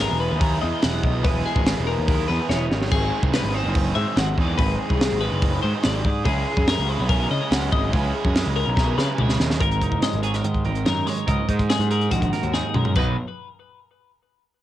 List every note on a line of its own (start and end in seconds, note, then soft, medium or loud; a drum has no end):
0.00 0.38 E3 medium
0.00 0.39 G#3 loud
0.00 0.40 B3 medium
0.00 0.41 E4 loud
0.00 0.42 G#4 loud
0.00 0.20 A#4 medium
0.11 0.28 E1 medium
0.20 0.41 B4 medium
0.31 0.58 D#2 medium
0.39 1.23 E3 medium
0.39 1.24 G#3 medium
0.39 1.24 B3 medium
0.39 1.25 E4 medium
0.39 1.26 G#4 medium
0.39 0.61 A#4 medium
0.39 kick loud
0.39 open hi-hat medium
0.62 0.71 E2 loud
0.62 0.83 D#5 medium
0.82 1.01 E1 loud
0.82 1.04 F#5 medium
0.82 snare loud
0.82 open hi-hat medium
1.04 1.22 B1 loud
1.04 1.24 D#5 medium
1.04 kick medium
1.23 1.42 E1 loud
1.23 2.07 E3 medium
1.23 2.08 G#3 medium
1.23 2.09 B3 loud
1.23 2.09 E4 loud
1.23 2.10 G#4 loud
1.23 1.45 B4 medium
1.23 kick loud
1.23 open hi-hat medium
1.45 1.87 G#4 medium
1.56 1.73 G#1 loud
1.56 kick medium
1.66 snare loud
1.66 open hi-hat medium
1.78 1.95 E1 medium
1.87 2.28 A#4 medium
1.99 2.25 D#2 loud
2.07 2.71 E3 medium
2.07 2.71 G#3 medium
2.07 2.72 B3 medium
2.07 2.72 E4 medium
2.07 2.73 G#4 medium
2.07 kick loud
2.07 open hi-hat medium
2.28 2.38 E2 loud
2.28 2.49 B4 medium
2.49 2.67 E1 loud
2.49 2.91 C#5 medium
2.49 snare medium
2.70 2.88 G#1 loud
2.70 3.56 G#2 medium
2.70 3.53 D#3 medium
2.70 3.55 F#3 medium
2.70 3.54 C4 medium
2.70 3.53 D#4 medium
2.70 3.52 G#4 medium
2.70 snare loud
2.81 snare medium
2.91 3.10 G#1 loud
2.91 3.33 G#4 medium
2.91 kick loud
2.91 crash loud
3.23 3.41 C2 loud
3.23 kick medium
3.33 3.54 B4 medium
3.33 snare loud
3.33 open hi-hat medium
3.44 3.61 G#1 medium
3.53 4.35 G#2 medium
3.53 4.36 D#3 medium
3.53 4.37 F#3 medium
3.53 4.36 C4 medium
3.53 4.36 D#4 medium
3.53 4.39 G#4 medium
3.53 3.74 C5 medium
3.65 3.91 F#1 loud
3.74 3.95 B4 medium
3.74 kick loud
3.74 open hi-hat medium
3.95 4.05 G#2 loud
3.95 4.16 E5 medium
4.16 4.34 G#1 loud
4.16 4.37 F#5 medium
4.16 snare loud
4.16 open hi-hat medium
4.36 4.56 E2 medium
4.36 5.19 G#2 medium
4.36 5.20 D#3 loud
4.36 5.20 F#3 loud
4.36 5.20 C4 loud
4.36 5.20 D#4 medium
4.36 5.20 G#4 loud
4.36 4.58 D5 medium
4.36 kick medium
4.58 4.77 G#1 loud
4.58 4.78 B4 loud
4.58 kick loud
4.58 open hi-hat medium
4.78 5.21 G#4 medium
4.90 5.08 C2 loud
4.90 kick medium
5.01 snare loud
5.01 open hi-hat medium
5.12 5.29 G#1 medium
5.20 6.04 G#2 medium
5.20 6.04 D#3 medium
5.20 6.04 F#3 medium
5.20 6.03 C4 medium
5.20 6.03 D#4 medium
5.20 6.27 G#4 medium
5.20 5.62 B4 medium
5.32 5.59 F#1 medium
5.42 kick loud
5.42 open hi-hat medium
5.62 5.72 G#2 loud
5.62 5.83 C5 medium
5.83 6.02 G#1 loud
5.83 6.25 D5 medium
5.83 snare loud
5.83 open hi-hat medium
6.05 6.23 G#2 loud
6.05 kick medium
6.24 6.43 C#2 loud
6.24 7.08 C#3 medium
6.24 7.08 G#3 loud
6.24 7.09 C#4 loud
6.24 7.10 E4 loud
6.24 6.67 G#4 loud
6.24 7.11 G#4 loud
6.24 kick loud
6.24 open hi-hat medium
6.57 6.75 F#2 loud
6.57 kick medium
6.67 6.89 A#4 medium
6.67 snare loud
6.67 open hi-hat medium
6.78 6.96 C#2 loud
6.89 7.09 B4 medium
7.00 7.26 B1 loud
7.08 7.91 C#3 medium
7.08 7.93 G#3 medium
7.08 7.92 C#4 medium
7.08 7.92 E4 medium
7.08 7.95 G#4 medium
7.08 7.30 A#4 medium
7.08 kick loud
7.08 open hi-hat medium
7.31 7.39 C#3 loud
7.31 7.51 D#5 medium
7.51 7.69 C#2 loud
7.51 7.72 F#5 medium
7.51 snare loud
7.51 open hi-hat medium
7.72 7.90 G#1 loud
7.72 7.93 D#5 medium
7.72 kick medium
7.92 8.11 C#2 loud
7.92 8.74 C#3 medium
7.92 8.75 G#3 medium
7.92 8.76 C#4 loud
7.92 8.76 E4 loud
7.92 8.77 G#4 loud
7.92 8.14 B4 medium
7.92 kick loud
7.92 open hi-hat medium
8.14 8.56 G#4 medium
8.25 8.43 F#2 medium
8.25 kick medium
8.35 snare loud
8.35 open hi-hat medium
8.46 8.64 C#2 medium
8.56 8.98 A#4 medium
8.67 8.94 B1 loud
8.75 9.58 C#3 medium
8.75 9.59 G#3 medium
8.75 9.59 C#4 medium
8.75 9.60 E4 loud
8.75 9.60 G#4 medium
8.75 kick loud
8.75 snare medium
8.98 9.07 C#3 loud
8.98 9.19 B4 medium
8.98 snare medium
9.18 9.37 C#2 loud
9.18 9.60 C#5 medium
9.18 mid tom medium
9.29 snare medium
9.40 9.58 D#2 loud
9.40 snare loud
9.50 snare medium
9.60 9.78 G#1 loud
9.60 11.25 G#2 medium
9.60 10.02 A#4 medium
9.60 10.23 A#4 medium
9.60 kick loud
9.60 closed hi-hat medium
9.71 closed hi-hat soft
9.81 10.00 F#1 medium
9.81 10.85 D#4 medium
9.81 kick medium
9.81 closed hi-hat medium
9.92 kick medium
10.02 11.05 G#3 medium
10.02 10.22 D#5 medium
10.02 snare loud
10.02 closed hi-hat loud
10.13 10.40 G#1 medium
10.13 closed hi-hat soft
10.23 10.34 G#4 medium
10.23 10.44 C#5 medium
10.23 closed hi-hat medium
10.34 10.64 A#4 medium
10.34 snare soft
10.34 closed hi-hat soft
10.44 10.62 G#2 medium
10.44 11.26 D#3 medium
10.44 10.86 D#5 medium
10.44 closed hi-hat medium
10.54 kick medium
10.54 closed hi-hat soft
10.65 10.83 G#1 loud
10.65 11.26 A#4 medium
10.65 closed hi-hat medium
10.75 closed hi-hat soft
10.86 11.04 F#2 medium
10.86 11.49 D#4 medium
10.86 11.07 A#4 medium
10.86 snare loud
10.86 closed hi-hat medium
11.06 11.25 G#3 medium
11.06 11.28 C#5 medium
11.06 snare soft
11.06 open hi-hat medium
11.18 closed hi-hat soft
11.26 11.37 C#2 loud
11.26 12.95 G#2 medium
11.26 11.90 A#4 medium
11.26 11.69 D#5 loud
11.26 kick loud
11.26 closed hi-hat medium
11.49 11.67 G#2 medium
11.49 12.53 D#4 medium
11.49 kick medium
11.49 closed hi-hat medium
11.59 kick medium
11.59 closed hi-hat soft
11.70 12.73 G#3 medium
11.70 11.90 G#4 medium
11.70 snare loud
11.70 closed hi-hat medium
11.79 12.07 G#2 medium
11.79 closed hi-hat soft
11.91 12.12 G#4 medium
11.91 12.32 A#4 medium
11.91 closed hi-hat medium
12.01 closed hi-hat soft
12.11 12.30 A#1 loud
12.11 12.94 D#3 medium
12.11 12.54 F#4 medium
12.11 kick medium
12.11 closed hi-hat medium
12.22 kick medium
12.22 closed hi-hat soft
12.33 12.94 A#4 medium
12.33 snare soft
12.33 closed hi-hat medium
12.43 12.62 D#2 medium
12.43 closed hi-hat soft
12.54 12.94 D#4 medium
12.54 12.75 G#4 medium
12.54 snare medium
12.74 12.93 F#2 loud
12.74 12.93 G#3 medium
12.74 12.96 A#4 medium
12.74 mid tom medium
12.85 floor tom medium
12.96 13.16 B1 medium
12.96 13.15 B2 medium
12.96 13.16 F#3 medium
12.96 13.16 D#4 medium
12.96 13.16 F#4 medium
12.96 13.16 B4 medium
12.96 13.17 B4 medium
12.96 kick loud
12.96 crash medium